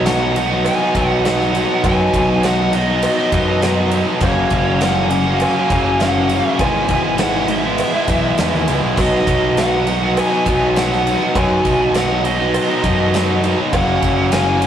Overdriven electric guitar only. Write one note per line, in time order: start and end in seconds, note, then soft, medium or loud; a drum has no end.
0.05 0.35 B2 loud
0.05 0.22 F#3 loud
0.05 0.21 B3 loud
0.05 0.19 D#4 loud
0.20 0.36 F#3 medium
0.20 0.36 B3 medium
0.20 0.36 D#4 medium
0.36 muted overdriven electric guitar stroke soft
0.49 0.82 F#3 medium
0.49 0.80 B3 medium
0.49 0.78 D#4 medium
0.79 0.96 F#3 medium
0.79 0.95 B3 medium
0.79 0.96 D#4 medium
0.95 1.23 B2 medium
0.95 1.25 F#3 medium
0.95 1.25 B3 medium
0.95 1.26 D#4 medium
1.24 1.52 B2 medium
1.24 1.41 F#3 loud
1.24 1.39 B3 loud
1.24 1.38 D#4 loud
1.39 1.54 F#3 medium
1.39 1.54 B3 medium
1.39 1.55 D#4 medium
1.54 1.82 B2 medium
1.54 1.71 F#3 medium
1.54 1.69 B3 medium
1.54 1.68 D#4 medium
1.69 1.83 F#3 medium
1.69 1.83 B3 medium
1.69 1.85 D#4 medium
1.83 2.41 B2 loud
1.83 2.43 F#3 medium
1.83 2.43 B3 loud
1.83 2.44 D#4 loud
2.42 2.71 B2 loud
2.42 2.60 F#3 loud
2.42 2.58 B3 loud
2.42 2.56 D#4 loud
2.57 2.72 F#3 medium
2.57 2.72 B3 medium
2.57 2.72 D#4 medium
2.72 muted overdriven electric guitar stroke soft
2.87 3.19 F#3 medium
2.87 3.17 B3 medium
2.87 3.16 D#4 medium
3.17 3.32 F#3 medium
3.17 3.33 B3 medium
3.17 3.33 D#4 medium
3.32 3.60 B2 medium
3.32 3.60 F#3 medium
3.32 3.62 B3 medium
3.32 3.63 D#4 medium
3.61 3.90 B2 medium
3.61 3.77 F#3 loud
3.61 3.76 B3 loud
3.61 3.74 D#4 loud
3.75 3.91 F#3 medium
3.75 3.91 B3 medium
3.75 3.92 D#4 medium
3.91 4.19 B2 medium
3.91 4.07 F#3 medium
3.91 4.06 B3 medium
3.91 4.04 D#4 medium
4.05 4.20 F#3 medium
4.05 4.20 B3 medium
4.05 4.19 D#4 medium
4.20 4.78 F#2 medium
4.20 4.79 C#3 medium
4.20 4.80 F#3 medium
4.20 4.81 A#3 loud
4.20 4.81 C#4 loud
4.79 5.25 F#2 medium
4.79 5.09 C#3 loud
4.79 4.96 F#3 loud
4.79 4.95 A#3 loud
4.79 4.93 C#4 loud
4.95 5.09 F#3 medium
4.95 5.09 A#3 medium
4.95 5.10 C#4 medium
5.10 muted overdriven electric guitar stroke soft
5.25 5.56 F#3 medium
5.25 5.55 A#3 medium
5.25 5.54 C#4 medium
5.55 5.69 F#3 medium
5.55 5.70 A#3 medium
5.55 5.71 C#4 medium
5.69 5.99 C#3 medium
5.69 5.99 F#3 loud
5.69 6.00 A#3 medium
5.69 6.01 C#4 loud
5.99 6.44 F#2 medium
5.99 6.29 C#3 medium
5.99 6.16 F#3 loud
5.99 6.15 A#3 loud
5.99 6.13 C#4 loud
6.14 6.29 F#3 medium
6.14 6.30 A#3 medium
6.14 6.31 C#4 medium
6.30 6.58 C#3 medium
6.30 6.46 F#3 medium
6.30 6.45 A#3 medium
6.30 6.43 C#4 medium
6.44 6.59 F#3 medium
6.44 6.59 A#3 medium
6.44 6.58 C#4 medium
6.59 7.17 G#2 medium
6.59 7.18 E3 medium
6.59 7.19 G#3 medium
6.59 7.20 B3 loud
6.59 7.20 E4 loud
7.18 7.63 G#2 loud
7.18 7.47 E3 loud
7.18 7.34 G#3 loud
7.18 7.34 B3 loud
7.18 7.31 E4 loud
7.32 7.47 G#3 medium
7.32 7.48 B3 medium
7.32 7.48 E4 medium
7.48 muted overdriven electric guitar stroke soft
7.62 7.94 G#3 medium
7.62 7.94 B3 medium
7.62 7.91 E4 medium
7.93 8.07 G#3 medium
7.93 8.09 B3 medium
7.93 8.09 E4 medium
8.07 8.37 E3 medium
8.07 8.37 G#3 medium
8.07 8.39 B3 medium
8.07 8.39 E4 loud
8.37 8.82 G#2 loud
8.37 8.65 E3 loud
8.37 8.54 G#3 loud
8.37 8.53 B3 loud
8.37 8.51 E4 loud
8.52 8.66 G#3 medium
8.52 8.68 B3 medium
8.52 8.68 E4 medium
8.67 8.95 E3 medium
8.67 8.83 G#3 medium
8.67 8.83 B3 medium
8.67 8.80 E4 medium
8.81 8.97 G#3 medium
8.81 8.98 B3 medium
8.81 8.95 E4 medium
8.96 9.56 B2 medium
8.96 9.57 F#3 loud
8.96 9.58 B3 loud
8.96 9.59 D#4 loud
9.56 9.87 B2 loud
9.56 9.74 F#3 loud
9.56 9.72 B3 loud
9.56 9.71 D#4 loud
9.71 9.87 F#3 medium
9.71 9.87 B3 medium
9.71 9.88 D#4 medium
9.87 muted overdriven electric guitar stroke soft
10.01 10.34 F#3 medium
10.01 10.32 B3 medium
10.01 10.30 D#4 medium
10.31 10.46 F#3 medium
10.31 10.46 B3 medium
10.31 10.47 D#4 medium
10.45 10.74 B2 medium
10.45 10.76 F#3 medium
10.45 10.76 B3 medium
10.45 10.77 D#4 medium
10.75 11.04 B2 loud
10.75 10.93 F#3 loud
10.75 10.90 B3 loud
10.75 10.89 D#4 loud
10.90 11.05 F#3 medium
10.90 11.06 B3 medium
10.90 11.07 D#4 medium
11.05 11.33 B2 medium
11.05 11.22 F#3 medium
11.05 11.20 B3 medium
11.05 11.19 D#4 medium
11.20 11.35 F#3 medium
11.20 11.35 B3 medium
11.20 11.36 D#4 medium
11.35 11.94 B2 medium
11.35 11.95 F#3 medium
11.35 11.95 B3 medium
11.35 11.96 D#4 medium
11.95 12.24 B2 loud
11.95 12.12 F#3 loud
11.95 12.10 B3 loud
11.95 12.08 D#4 loud
12.09 12.25 F#3 medium
12.09 12.24 B3 medium
12.09 12.24 D#4 medium
12.25 muted overdriven electric guitar stroke medium
12.38 12.71 F#3 medium
12.38 12.69 B3 medium
12.38 12.67 D#4 medium
12.68 12.83 F#3 medium
12.68 12.84 B3 medium
12.68 12.85 D#4 medium
12.83 13.11 B2 medium
12.83 13.13 F#3 medium
12.83 13.13 B3 loud
12.83 13.14 D#4 loud
13.12 13.41 B2 loud
13.12 13.30 F#3 loud
13.12 13.28 B3 loud
13.12 13.26 D#4 loud
13.28 13.42 F#3 medium
13.28 13.43 B3 medium
13.28 13.44 D#4 medium
13.43 13.71 B2 medium
13.43 13.59 F#3 medium
13.43 13.58 B3 medium
13.43 13.56 D#4 medium
13.58 13.72 F#3 medium
13.58 13.72 B3 medium
13.58 13.71 D#4 medium
13.73 14.30 F#2 medium
13.73 14.31 C#3 medium
13.73 14.31 F#3 medium
13.73 14.32 A#3 medium
13.73 14.33 C#4 loud
14.31 14.67 F#2 loud
14.31 14.60 C#3 loud
14.31 14.48 F#3 loud
14.31 14.46 A#3 loud
14.31 14.45 C#4 loud
14.46 14.60 F#3 medium
14.46 14.61 A#3 medium
14.46 14.61 C#4 medium
14.61 muted overdriven electric guitar stroke soft